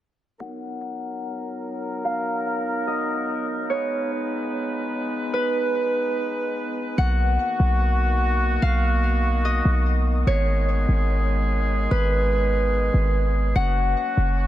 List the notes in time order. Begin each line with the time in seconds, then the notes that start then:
0.40 F#3 B3 D#4 A#4 F#5
2.05 F5
2.87 D#5
3.69 G#3 B4 C#5
5.34 B4
6.98 B1 D#3 A#3 B3 F#4 F#5
7.60 B1
8.62 B1 F5
9.45 D#5
9.65 B1
10.27 G#1 G#3 G#4 C#5
10.89 G#1
11.91 G#1 B4
12.94 G#1
13.56 F#1 F#3 A#3 C#4 F#4 F#5
14.17 F#1